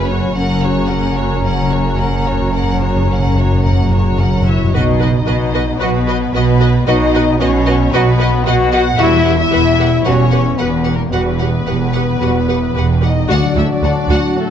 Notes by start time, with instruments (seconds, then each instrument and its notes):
Already playing: double bass section F#1, cello section F#2, harp F#2 C#3 C#4 B4, viola section C#4, french horn section C#4 B4, clarinet C#4, violin section B4, flute B5
0.01 harp F#4
0.08 viola section F#4, violin section C#5
0.19 harp C#4
0.35 double bass section F#1, harp F#2, timpani F#2, cello section F#2, viola section C#4, clarinet C#4, french horn section C#4 A#4, violin section A#4 F#5, flute A#5
0.51 timpani F#2, harp C#3
0.59 timpani F#2, violin section C#5
0.63 timpani F#2, viola section F#4, violin section C#5
0.73 timpani F#2, harp C#4
0.81 timpani F#2
0.88 timpani F#2, viola section C#4, harp A#4, violin section A#4 F#5
0.96 timpani F#2
1.04 timpani F#2, harp F#4
1.12 timpani F#2
1.16 timpani F#2, viola section F#4, violin section C#5
1.25 timpani F#2, harp C#4
1.35 timpani F#2
1.41 timpani F#2, harp F#2, viola section C#4, violin section A#4 F#5
1.49 timpani F#2
1.57 timpani F#2, harp C#3
1.65 timpani F#2
1.69 timpani F#2, viola section F#4, violin section C#5
1.79 timpani F#2, harp C#4
1.86 timpani F#2
1.94 timpani F#2, viola section C#4, violin section A#4, harp A#4
1.99 timpani F#2, violin section F#5
2.09 timpani F#2
2.16 timpani F#2, harp F#4
2.24 timpani F#2, viola section F#4, violin section C#5
2.32 timpani F#2, harp C#4
2.41 timpani F#2
2.47 timpani F#2
2.52 harp F#2, timpani F#2, viola section C#4, violin section A#4 F#5
2.63 timpani F#2
2.71 timpani F#2, harp C#3
2.79 timpani F#2, viola section F#4, violin section C#5
2.83 timpani F#2, violin section C#5
2.90 harp C#4
2.95 timpani F#2
3.04 timpani F#2, violin section A#4
3.08 timpani F#2, viola section C#4, harp A#4
3.13 violin section F#5
3.18 timpani F#2
3.27 timpani F#2, harp F#4
3.34 timpani F#2, viola section F#4, violin section C#5
3.38 violin section C#5
3.46 harp C#4
3.52 timpani F#2
3.58 timpani F#2
3.64 harp F#2, timpani F#2, viola section C#4, violin section A#4 F#5
3.73 timpani F#2
3.81 timpani F#2, harp C#3
3.89 timpani F#2, viola section F#4, violin section C#5
3.94 timpani F#2, violin section C#5
4.01 timpani F#2, harp C#4
4.11 timpani F#2
4.17 timpani F#2, viola section C#4, violin section A#4 F#5, harp A#4
4.26 timpani F#2
4.34 timpani F#2, harp F#4
4.41 timpani F#2, french horn section E4, violin section C#5
4.45 timpani F#2, viola section F#4, violin section C#5 E5
4.56 timpani F#2, harp C#4
4.64 timpani F#2
4.72 double bass section B1, harp B2, cello section B2, trombone section B2 F#3, timpani B2, french horn section D#4, viola section F#4 B4, trumpet section F#4, violin section D#5
4.87 harp B3
5.00 viola section F#4 B4, violin section D#5
5.13 french horn section D#4, harp B4, violin section D#5
5.26 double bass section B1, cello section B2, viola section F#4 B4, harp D#5, violin section D#5
5.40 harp F#5
5.54 viola section F#4 B4, harp D#5, violin section D#5
5.79 double bass section B1, cello section B2, trombone section B2 F#3, french horn section B3, viola section F#4 B4, trumpet section F#4, violin section B4 D#5
5.93 harp B3
6.06 viola section F#4 B4, violin section D#5
6.32 double bass section B1, cello section B2, french horn section B3, viola section F#4 B4, violin section B4 D#5, harp D#5
6.46 harp F#5
6.60 viola section F#4 B4, harp D#5, violin section D#5
6.85 double bass section B1, cello section B2, harp B2, trombone section B2 F#3, french horn section D#4, viola section F#4 B4, trumpet section F#4, violin section D#5
7.01 harp B3
7.14 viola section F#4 B4, violin section D#5
7.27 harp B4
7.39 double bass section B1, cello section B2, french horn section C#4, viola section F#4 B4, violin section C#5 D#5, harp D#5
7.53 harp F#5
7.66 viola section F#4 B4, violin section D#5, harp D#5
7.92 double bass section B1, cello section B2, trombone section B2 F#3, french horn section B3, trumpet section F#4, viola section F#4 B4, violin section B4 D#5
8.07 harp B3
8.19 viola section F#4 B4, violin section D#5
8.34 harp B4
8.46 double bass section B1, cello section B2, viola section F#4 B4, french horn section F#4, violin section D#5 F#5, harp D#5
8.60 harp F#5
8.72 viola section F#4 B4, french horn section F#4, violin section D#5 F#5, harp D#5
8.98 double bass section E1, cello section E2, trombone section B2 G3, harp E3, french horn section E4, trumpet section F#4, viola section G4 B4, violin section E5 F#5
9.24 viola section G4 B4, harp G4, violin section F#5
9.38 french horn section E4, violin section E5, harp E5
9.51 double bass section E1, cello section E2, viola section G4 B4, violin section F#5, harp F#5
9.67 harp G5
9.78 viola section G4 B4, harp F#5, violin section F#5
9.92 harp G4
10.04 double bass section E1, cello section E2, trombone section B2 G3, harp G3, french horn section C#4, trumpet section F#4, viola section G4 B4, violin section C#5 F#5
10.19 harp E4
10.31 viola section G4 B4, harp G4, violin section F#5
10.46 harp E5
10.57 double bass section E1, cello section E2, french horn section B3, viola section G4 B4, violin section B4 F#5, harp F#5
10.73 harp G5
10.85 viola section G4 B4, violin section F#5, harp F#5
10.94 french horn section A#3, violin section A#4
11.00 harp G4
11.10 double bass section E1, cello section E2, trombone section B2 G3, harp E3, french horn section B3, trumpet section F#4, viola section G4 B4, violin section B4 F#5
11.27 harp E4
11.39 harp G4, viola section G4 B4, violin section F#5
11.53 harp E5
11.65 double bass section E1, cello section E2, viola section G4 B4, violin section F#5, harp F#5
11.80 harp G5
11.93 viola section G4 B4, violin section F#5, harp F#5
12.09 harp G4
12.20 double bass section E1, cello section E2, trombone section B2 G3, harp G3, trumpet section F#4, viola section G4 B4, violin section F#5
12.35 harp E4
12.48 harp G4, viola section G4 B4, violin section F#5
12.61 harp E5
12.73 double bass section E1, cello section E2, viola section G4 B4, harp F#5
12.78 violin section F#5
12.88 harp G5
13.01 french horn section D#4, viola section G4 B4, violin section D#5 F#5, harp F#5
13.16 harp G4
13.28 double bass section D2, cello section D2, trombone section A2 F#3, harp D3, french horn section D4, viola section F#4, trumpet section F#4, violin section D5 F#5
13.44 harp F#3
13.55 double bass section D2, cello section D2, viola section E4 F#4, harp A4, violin section E5
13.69 harp F#3, french horn section D4, violin section D5
13.82 double bass section D2, cello section D2, viola section F#4, violin section F#5, harp A5
14.09 double bass section D2, cello section D2, viola section F#4, violin section F#5
14.37 french horn section A3, harp D4, violin section A4